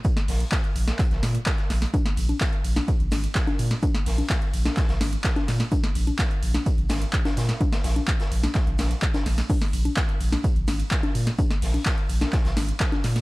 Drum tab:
CC |----------------|----------------|----------------|----------------|
RD |----------------|--x---x---x---x-|--x---x---x---x-|--x---x---x---x-|
HH |xxoxxxoxxxoxxxox|xxoxxxoxxxoxxxox|xxoxxxoxxxoxxxox|xxoxxxoxxxoxxxox|
SH |x---x-x-x-x-x-x-|x-x-x-x-x-x-x-x-|x---x-x-xxx-x-x-|x-x-x-x-x-x-xxx-|
CP |----x---x---x---|----x-------x---|----x---x---x---|----x-------x---|
SD |-oo-o--o-oo-oooo|-o--o--o--o-oo-o|-oo-o--oooo-oooo|-o--o--o--o--ooo|
CG |----------------|o--o---o--o--o--|o--o---o--o--o--|o--o---o--o--o--|
BD |o---o---o---o---|o---o---o---o---|o---o---o---o---|o---o---o---o---|

CC |----------------|x---------------|----------------|
RD |--x---x---x---x-|--x---x---x---x-|--x---x---x---x-|
HH |xxoxxxoxxxoxxxox|xxoxxxoxxxoxxxox|xxoxxxoxxxoxxxox|
SH |xxx-xx-xx-x-xx-x|x-x-x-x-x-x-x-x-|x---x-x-xxx-x-x-|
CP |----x---x---x---|----x-------x---|----x---x---x---|
SD |-oo-oo-oo-o--ooo|-o--o--o--o-oo-o|-oo-o--oooo-oooo|
CG |o--o---o--o--o--|o--o---o--o--o--|o--o---o--o--o--|
BD |o---o---o---o---|o---o---o---o---|o---o---o---o---|